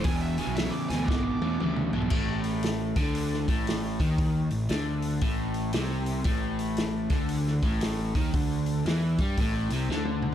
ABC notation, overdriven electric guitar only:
X:1
M:4/4
L:1/8
Q:"Swing" 1/4=116
K:Am
V:1 name="Overdriven electric guitar" clef=bass
[E,,B,,] [E,,B,,] [E,,^C,] [E,,B,,] [E,,B,,] [E,,B,,] [E,,C,] [E,,B,,] | A,,3 D,2 A,,2 ^D,- | ^D, A,, =D,2 A,,2 C,2 | A,,3 D,2 A,,2 ^D, |
D,2 E, G, A,, C, D,2 |]